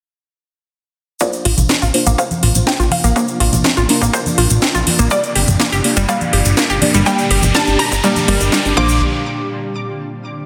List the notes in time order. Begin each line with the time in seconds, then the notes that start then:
1.20 C3 F3 A#3 D4 F4 C5 D5, kick, closed hi-hat, riser, shaker
1.33 closed hi-hat, shaker
1.45 A#1 F4, open hi-hat
1.57 A#1, closed hi-hat, high conga, low conga, shaker
1.69 C4, kick, snare, closed hi-hat, shaker
1.82 A#1 F4, closed hi-hat, shaker
1.94 A#3 D4 F4 C5, open hi-hat
2.06 A#1 A#3, closed hi-hat, shaker
2.18 C5 F5, kick, closed hi-hat, shaker
2.31 closed hi-hat, high conga, shaker
2.43 A#1 F4, open hi-hat
2.55 A#1, closed hi-hat, shaker
2.67 C4 G5, kick, snare, closed hi-hat, shaker
2.80 A#1 F4, closed hi-hat, shaker
2.91 F5, open hi-hat, high conga
3.04 A#1 A#3, closed hi-hat, shaker
3.16 A#3 D4 F4 C5, kick, closed hi-hat, shaker
3.28 closed hi-hat, shaker
3.40 A#1 F4, open hi-hat
3.53 A#1, closed hi-hat, high conga, low conga, shaker
3.64 C4, kick, snare, closed hi-hat, shaker
3.77 A#1 F4, closed hi-hat, shaker
3.89 A#3 D4 F4 A#4, snare, open hi-hat
4.01 A#1 A#3, kick, closed hi-hat, shaker
4.13 C5, kick, closed hi-hat, shaker
4.26 closed hi-hat, high conga, shaker
4.38 A#1 F4, open hi-hat
4.50 A#1, closed hi-hat, shaker
4.62 C4, kick, snare, closed hi-hat, shaker
4.75 A#1 F4, closed hi-hat, shaker
4.87 open hi-hat, high conga
4.99 A#1 A#3, closed hi-hat, shaker
5.10 A#2 D3 G3 A#3 D4 G4 D5, kick, closed hi-hat, shaker
5.23 closed hi-hat, shaker
5.35 G1 G4, open hi-hat
5.48 G1, closed hi-hat, high conga, low conga, shaker
5.60 A#3, kick, snare, closed hi-hat, shaker
5.72 G1 G4, closed hi-hat, shaker
5.84 A#3 D4 G4 D5, open hi-hat
5.96 G1 G3, closed hi-hat, shaker
6.09 G3 A#3 D4 G4 D5 F5, kick, closed hi-hat, shaker
6.21 closed hi-hat, high conga, shaker
6.33 G1 G4, open hi-hat
6.45 G1, closed hi-hat, shaker
6.57 A#3, kick, snare, closed hi-hat, shaker
6.70 G1 G4, closed hi-hat, shaker
6.81 A#3 D4 G4 D5, open hi-hat, high conga
6.94 G1 G3, closed hi-hat, shaker
7.06 G3 A#3 D4 G4 D5 G5, kick, closed hi-hat, shaker
7.19 closed hi-hat, shaker
7.31 G1 G4, open hi-hat
7.42 G1, closed hi-hat, high conga, low conga, shaker
7.55 G3 A#3 D4 G4 D5 A5, kick, snare, closed hi-hat, shaker
7.67 G1, closed hi-hat, shaker
7.79 G4 A#5, snare, open hi-hat
7.92 G1, kick, closed hi-hat, shaker
8.04 G3 A#3 D4 G4 D5, kick, closed hi-hat, shaker
8.16 closed hi-hat, high conga, shaker
8.28 G1 G3 A#3 D4 G4 D5, open hi-hat
8.41 G1, closed hi-hat, shaker
8.52 G3 A#3 D4 G4 D5, kick, snare, closed hi-hat, shaker
8.65 G1, closed hi-hat, shaker
8.77 A#1 A#3 D4 F4 C5 D6, kick, high conga
8.89 shaker